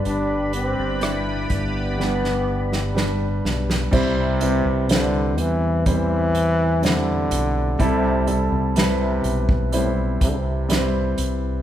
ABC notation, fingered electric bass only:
X:1
M:4/4
L:1/16
Q:1/4=62
K:C
V:1 name="Fingered electric bass" clef=bass
G,,,3 G,,,3 G,,,8 B,,,2 | C,,3 C,,3 E,,8 B,,,2 | C,,3 C,,3 B,,,4 C,,4 C,,2 |]